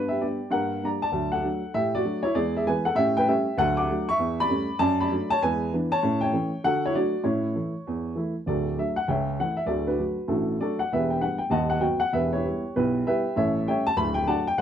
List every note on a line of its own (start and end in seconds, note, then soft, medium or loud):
0.00 0.17 G2 medium
0.00 0.22 B3 soft
0.00 0.21 D4 medium
0.00 0.11 B4 medium
0.08 0.21 G4 medium
0.08 0.21 E5 medium
0.21 0.38 G3 soft
0.21 0.39 B3 soft
0.21 0.38 D4 soft
0.21 0.51 G4 soft
0.21 0.53 D5 medium
0.50 0.78 G2 medium
0.50 0.69 A#3 soft
0.50 0.81 A#4 medium
0.50 0.83 F#5 medium
0.83 1.00 G3 soft
0.83 1.01 A#3 soft
0.83 1.01 D4 soft
0.83 1.02 D5 medium
0.83 1.03 A#5 medium
1.02 1.31 D5 medium
1.02 1.33 A5 medium
1.12 1.39 D2 medium
1.12 1.30 F#3 soft
1.32 1.72 A4 soft
1.32 1.74 F#5 medium
1.43 1.61 F#3 soft
1.43 1.61 A3 soft
1.43 1.61 D4 soft
1.74 2.01 A2 medium
1.74 1.94 G4 medium
1.74 1.94 E5 loud
1.95 2.24 F#4 medium
1.95 2.25 D5 loud
2.04 2.22 F#3 soft
2.04 2.22 A3 soft
2.04 2.22 D4 soft
2.23 2.35 E4 medium
2.23 2.35 C#5 medium
2.34 2.61 E2 medium
2.34 2.53 G#3 medium
2.34 2.54 G#4 medium
2.34 2.55 D5 loud
2.56 2.67 G#4 medium
2.56 2.67 E5 medium
2.67 2.83 E3 soft
2.67 2.84 G#3 soft
2.67 2.84 B3 soft
2.67 2.86 B4 medium
2.67 2.86 G#5 medium
2.85 2.96 A4 medium
2.85 2.97 F#5 medium
2.95 3.22 A2 medium
2.95 3.15 C#4 medium
2.95 3.15 G4 medium
2.95 3.16 E5 loud
3.17 3.28 B4 medium
3.17 3.28 G5 loud
3.27 3.44 G3 soft
3.27 3.45 A3 soft
3.27 3.45 C#4 medium
3.27 3.57 G4 medium
3.27 3.59 E5 medium
3.58 3.84 D2 medium
3.58 3.76 F#3 medium
3.58 3.77 A4 medium
3.58 3.77 F#5 loud
3.77 4.07 F#5 medium
3.77 4.08 D6 medium
3.90 4.07 F#3 soft
3.90 4.06 A3 soft
3.90 4.07 D4 medium
4.09 4.38 E5 medium
4.09 4.39 C#6 loud
4.19 4.45 E2 medium
4.40 4.79 D5 medium
4.40 4.81 B5 loud
4.49 4.66 G3 soft
4.49 4.67 A3 medium
4.49 4.67 C#4 medium
4.79 5.06 F#2 medium
4.79 4.99 D5 medium
4.79 4.99 A5 loud
5.01 5.29 D5 medium
5.01 5.31 B5 medium
5.12 5.28 F#3 soft
5.12 5.29 A3 soft
5.12 5.29 D4 soft
5.30 5.42 C#5 medium
5.30 5.42 A5 loud
5.42 5.68 E2 medium
5.42 5.60 G#3 medium
5.42 5.71 B4 medium
5.42 5.73 G#5 loud
5.73 5.90 E3 medium
5.73 5.90 B3 medium
5.73 5.90 D4 medium
5.92 6.20 C#5 medium
5.92 6.22 A5 loud
6.03 6.29 A2 medium
6.03 6.20 C#4 medium
6.21 6.61 C#5 medium
6.21 6.63 G5 medium
6.33 6.50 E3 soft
6.33 6.50 A3 soft
6.33 6.51 C#4 soft
6.64 6.90 D3 medium
6.64 6.82 F#4 medium
6.64 6.83 A4 medium
6.64 6.83 F#5 loud
6.85 6.96 E4 medium
6.85 6.95 C#5 medium
6.95 7.12 F#3 soft
6.95 7.12 A3 soft
6.95 7.12 D4 medium
6.95 7.24 F#4 medium
6.95 7.25 D5 medium
7.24 7.50 A2 medium
7.24 7.42 C#4 soft
7.24 7.54 E4 medium
7.24 8.16 C#5 medium
7.55 7.72 E3 soft
7.55 7.72 A3 soft
7.55 7.72 E4 soft
7.87 8.12 E2 medium
8.16 8.33 E3 soft
8.16 8.33 A3 soft
8.16 8.34 E4 soft
8.46 8.73 D1 medium
8.46 8.73 D2 soft
8.46 8.76 F#4 medium
8.46 8.76 A4 medium
8.46 8.78 D5 medium
8.78 8.95 F#3 soft
8.78 8.95 A3 soft
8.78 8.95 D4 soft
8.78 8.97 E5 medium
8.96 9.08 F#5 medium
9.08 9.34 C#2 medium
9.08 9.34 C#3 medium
9.08 9.37 C#5 medium
9.08 9.37 E5 medium
9.08 9.39 G5 medium
9.40 9.56 E3 soft
9.40 9.57 A3 soft
9.40 9.57 E4 soft
9.40 9.58 F#5 medium
9.57 9.69 E5 medium
9.66 9.93 D1 medium
9.66 9.94 D2 medium
9.66 9.87 F#4 soft
9.66 9.86 A4 soft
9.66 9.87 D5 medium
9.87 9.98 D4 soft
9.87 10.27 F#4 soft
9.87 10.30 B4 medium
9.98 10.16 F#3 soft
9.98 10.15 A3 soft
9.98 10.16 D4 soft
10.28 10.55 A1 medium
10.28 10.55 A2 medium
10.28 10.58 D4 soft
10.28 10.58 F#4 medium
10.28 10.60 A4 medium
10.60 10.77 F#3 soft
10.60 10.77 A3 soft
10.60 10.78 D4 soft
10.60 10.79 F#4 medium
10.60 10.79 A4 medium
10.60 10.80 D5 medium
10.79 10.91 F#5 medium
10.92 11.18 E1 medium
10.92 11.18 E2 medium
10.92 11.11 G4 medium
10.92 11.11 B4 medium
10.92 11.11 E5 medium
11.10 11.22 G5 medium
11.21 11.38 G3 soft
11.21 11.38 B3 soft
11.21 11.39 D4 soft
11.21 11.41 F#5 medium
11.38 11.51 G5 medium
11.50 11.77 D#1 medium
11.50 11.77 D#2 medium
11.50 11.70 D#5 medium
11.50 11.68 F#5 medium
11.50 11.71 A5 medium
11.70 11.82 F#5 medium
11.80 11.97 F#3 soft
11.80 11.98 B3 soft
11.80 11.98 F#4 soft
11.80 12.01 G5 medium
12.00 12.12 F#5 medium
12.13 12.39 E1 medium
12.13 12.39 E2 medium
12.13 12.32 G4 medium
12.13 12.32 B4 medium
12.13 12.33 E5 medium
12.33 12.45 E4 soft
12.33 12.72 G4 medium
12.33 12.75 C#5 medium
12.45 12.61 G3 soft
12.45 12.62 B3 soft
12.45 12.62 E4 soft
12.76 13.02 B1 medium
12.76 13.01 B2 medium
12.76 13.04 E4 medium
12.76 13.05 G4 medium
12.76 13.06 B4 medium
13.06 13.23 G3 soft
13.06 13.23 B3 soft
13.06 13.23 E4 soft
13.06 13.35 G4 medium
13.06 13.35 B4 medium
13.06 13.35 E5 medium
13.36 13.62 A1 medium
13.36 13.62 A2 medium
13.36 13.65 A4 medium
13.36 13.65 C#5 medium
13.36 13.67 E5 medium
13.67 13.84 G3 soft
13.67 13.85 A3 soft
13.67 13.84 C#4 medium
13.67 13.86 C#5 medium
13.67 13.86 E5 medium
13.67 13.86 G5 medium
13.87 13.97 A5 loud
13.97 14.23 D1 medium
13.97 14.22 D2 medium
13.97 14.16 B5 loud
14.14 14.26 G5 loud
14.27 14.44 F#3 soft
14.27 14.44 A3 soft
14.27 14.44 D4 soft
14.27 14.46 D5 medium
14.27 14.46 F#5 medium
14.27 14.46 A5 medium
14.47 14.58 G5 loud
14.58 14.61 F#5 loud